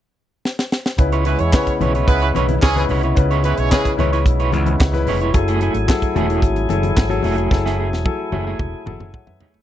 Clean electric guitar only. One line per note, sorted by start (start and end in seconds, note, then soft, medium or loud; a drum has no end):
0.98 muted clean electric guitar stroke soft
1.13 1.25 E4 medium
1.13 1.25 B4 medium
1.13 1.26 C#5 medium
1.26 1.41 E4 medium
1.26 1.40 B4 medium
1.26 1.39 C#5 medium
1.41 muted clean electric guitar stroke soft
1.54 muted clean electric guitar stroke soft
1.68 muted clean electric guitar stroke soft
1.81 1.95 E4 medium
1.81 1.95 B4 medium
1.81 1.94 C#5 medium
1.95 2.08 E4 medium
1.95 2.08 B4 medium
1.95 2.08 C#5 medium
2.09 muted clean electric guitar stroke medium
2.22 2.34 E4 soft
2.22 2.35 B4 medium
2.22 2.35 C#5 medium
2.35 2.55 E4 medium
2.35 2.48 B4 medium
2.35 2.48 C#5 medium
2.49 muted clean electric guitar stroke medium
2.77 muted clean electric guitar stroke soft
2.90 3.03 E4 medium
2.90 3.03 B4 medium
2.90 3.03 C#5 medium
3.04 3.17 E4 medium
3.04 3.17 B4 soft
3.04 3.17 C#5 medium
3.18 muted clean electric guitar stroke soft
3.31 3.44 E4 medium
3.31 3.44 B4 medium
3.31 3.45 C#5 medium
3.45 3.60 E4 medium
3.45 3.57 B4 medium
3.45 3.56 C#5 medium
3.58 muted clean electric guitar stroke soft
3.72 muted clean electric guitar stroke soft
3.86 muted clean electric guitar stroke medium
3.99 4.12 E4 medium
3.99 4.12 B4 medium
3.99 4.11 C#5 loud
4.12 4.25 E4 medium
4.12 4.26 B4 medium
4.12 4.26 C#5 medium
4.26 muted clean electric guitar stroke soft
4.40 4.52 E4 medium
4.40 4.53 B4 medium
4.40 4.53 C#5 medium
4.67 muted clean electric guitar stroke soft
4.81 muted clean electric guitar stroke soft
4.94 muted clean electric guitar stroke soft
5.08 5.22 E4 medium
5.08 5.21 B4 medium
5.08 5.20 C#5 medium
5.22 5.34 E4 medium
5.22 5.35 B4 medium
5.22 5.36 C#5 medium
5.35 muted clean electric guitar stroke soft
5.48 5.61 A3 medium
5.48 5.61 E4 medium
5.48 5.62 G#4 medium
5.62 5.77 A3 medium
5.62 5.75 E4 medium
5.62 5.74 G#4 medium
5.75 muted clean electric guitar stroke soft
5.89 muted clean electric guitar stroke soft
6.03 muted clean electric guitar stroke soft
6.16 6.30 A3 medium
6.16 6.29 E4 medium
6.16 6.29 G#4 loud
6.30 6.42 A3 medium
6.30 6.42 E4 medium
6.30 6.42 G#4 medium
6.43 muted clean electric guitar stroke soft
6.57 muted clean electric guitar stroke medium
6.84 muted clean electric guitar stroke soft
6.97 muted clean electric guitar stroke soft
7.11 muted clean electric guitar stroke soft
7.24 7.38 A3 medium
7.24 7.37 E4 medium
7.24 7.36 G#4 loud
7.38 7.50 A3 medium
7.38 7.51 E4 soft
7.38 7.51 G#4 medium
7.65 7.77 A3 medium
7.65 7.78 E4 medium
7.65 7.79 G#4 medium
7.79 7.94 A3 soft
7.79 7.92 E4 medium
7.79 7.91 G#4 medium
7.92 muted clean electric guitar stroke soft
8.06 muted clean electric guitar stroke soft
8.19 muted clean electric guitar stroke soft
8.32 8.47 A3 medium
8.32 8.46 E4 medium
8.32 8.46 G#4 medium
8.47 8.59 A3 medium
8.47 8.59 E4 medium
8.47 8.59 G#4 medium
8.73 muted clean electric guitar stroke soft
9.01 muted clean electric guitar stroke medium
9.28 muted clean electric guitar stroke soft
9.41 9.61 A3 loud
9.41 9.55 E4 medium
9.41 9.54 G#4 medium
9.55 muted clean electric guitar stroke soft